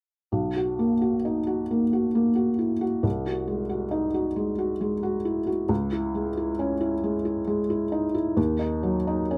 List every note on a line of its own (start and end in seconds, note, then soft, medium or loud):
0.32 3.00 B1 soft
0.56 0.92 F#4 soft
0.79 1.16 A#3 soft
1.01 1.38 F#4 soft
1.25 1.62 D#4 soft
1.47 1.84 F#4 soft
1.71 2.07 A#3 soft
1.93 2.29 F#4 soft
2.15 2.51 A#3 soft
2.35 2.72 F#4 soft
2.59 2.82 E4 soft
2.81 3.04 F#4 soft
3.03 5.65 C2 soft
3.27 3.62 F#4 soft
3.47 3.83 G#3 soft
3.69 4.05 F#4 soft
3.91 4.27 D#4 soft
4.14 4.50 F#4 soft
4.36 4.72 G#3 soft
4.58 4.94 F#4 soft
4.81 5.16 G#3 soft
5.03 5.38 F#4 soft
5.25 5.47 E4 soft
5.47 5.69 F#4 soft
5.69 8.33 C#2 medium
5.92 6.28 E4 soft
6.15 6.50 G#3 soft
6.37 6.72 E4 soft
6.59 6.94 C#4 soft
6.81 7.16 E4 soft
7.04 7.39 G#3 soft
7.25 7.61 E4 soft
7.47 7.83 G#3 soft
7.70 8.06 E4 soft
7.92 8.15 D#4 soft
8.14 8.37 E4 soft
8.37 9.38 D#2 medium
8.59 8.96 D#4 soft
8.83 9.20 F#3 soft
9.07 9.38 D#4 soft
9.31 9.38 C#4 soft